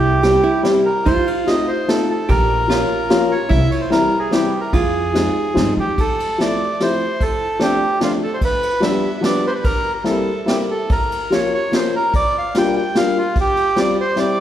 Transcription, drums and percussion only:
0.23 snare, ride
0.65 snare, ride
1.06 kick, ride
1.27 ride
1.47 snare, ride
1.89 snare, ride
2.29 kick, ride
2.70 snare, ride
3.10 snare, ride
3.50 kick, ride
3.72 ride
3.92 snare, ride
4.32 snare, ride
4.73 kick, ride
5.15 snare, ride
5.57 snare, ride
5.98 kick, ride
6.20 ride
6.40 snare, ride
6.80 snare, ride
7.21 kick, ride
7.60 snare, ride
8.01 snare, ride
8.41 kick, ride
8.63 ride
8.82 snare, ride
9.23 snare, ride
9.64 kick, ride
10.05 snare, ride
10.48 snare, ride
10.89 kick, ride
11.12 ride
11.32 snare, ride
11.73 snare, ride
12.14 kick, ride
12.55 snare, ride
12.95 snare, ride
13.36 kick, ride
13.57 ride
13.76 snare, ride
14.17 snare, ride

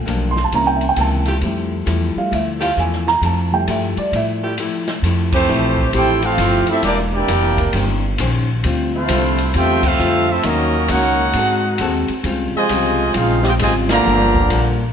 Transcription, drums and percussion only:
0.08 hi-hat pedal, ride
0.36 snare
0.52 ride
0.81 ride
0.96 hi-hat pedal, ride
1.25 ride
1.41 ride
1.87 hi-hat pedal, ride
2.32 ride
2.62 ride
2.77 hi-hat pedal
2.93 snare
3.08 snare
3.23 ride
3.67 hi-hat pedal, ride
3.97 ride
4.13 ride
4.58 hi-hat pedal, ride
4.87 snare, ride
5.04 ride
5.32 kick, crash
5.48 hi-hat pedal
5.77 kick
5.93 ride
6.22 ride
6.38 hi-hat pedal, ride
6.67 ride
6.83 ride
7.28 hi-hat pedal, ride
7.58 kick, ride
7.73 ride
8.18 hi-hat pedal, ride
8.64 ride
9.08 hi-hat pedal, ride
9.38 ride
9.54 ride
9.83 kick, crash
9.99 hi-hat pedal
10.43 ride
10.88 hi-hat pedal, ride
11.33 ride
11.78 hi-hat pedal, ride
12.08 ride
12.24 ride
12.69 hi-hat pedal, ride
13.14 ride
13.43 snare
13.59 hi-hat pedal, ride
13.89 snare, ride
14.35 kick
14.50 hi-hat pedal, ride

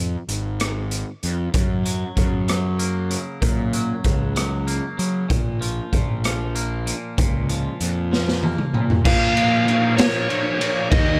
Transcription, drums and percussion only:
0.29 closed hi-hat
0.60 cross-stick, closed hi-hat
0.91 closed hi-hat
1.23 closed hi-hat
1.54 kick, closed hi-hat
1.86 closed hi-hat
2.17 kick, closed hi-hat
2.48 cross-stick, closed hi-hat
2.79 closed hi-hat
3.11 closed hi-hat
3.42 kick, closed hi-hat
3.73 closed hi-hat
4.04 kick, closed hi-hat
4.36 cross-stick, closed hi-hat
4.68 closed hi-hat
4.99 closed hi-hat
5.30 kick, closed hi-hat
5.62 closed hi-hat
5.93 kick, closed hi-hat
6.24 cross-stick, closed hi-hat
6.56 closed hi-hat
6.87 closed hi-hat
7.18 kick, closed hi-hat
7.49 closed hi-hat
7.81 closed hi-hat
8.13 snare
8.28 snare
8.43 high tom
8.58 mid tom
8.74 mid tom
8.90 floor tom
9.05 kick, crash
9.37 ride
9.68 ride
9.98 snare, ride
10.30 ride
10.61 ride
10.92 kick, ride

